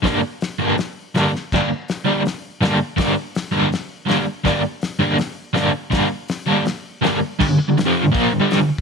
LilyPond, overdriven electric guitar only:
\new Staff \with { instrumentName = "Overdriven electric guitar" } { \clef bass \time 4/4 \key g \minor \tempo 4 = 163 <g, d g bes d'>8 r4 <g, d g bes d'>8 r4 <g, d g bes d'>8 r8 | <g, d g bes d'>8 r4 <g, d g bes d'>8 r4 <g, d g bes d'>8 r8 | <g, d g bes d'>8 r4 <g, d g bes d'>8 r4 <g, d g bes d'>8 r8 | <g, d g bes d'>8 r4 <g, d g bes d'>8 r4 <g, d g bes d'>8 r8 |
<g, d g bes d'>8 r4 <g, d g bes d'>8 r4 <g, d g bes d'>8 r8 | <g, d>16 <g, d>16 r16 <g, d>16 <g, d>16 <f, c f>8 <g, d>16 <bes, f bes>8 <g, d>16 <g, d g>8 <g, d>16 r8 | }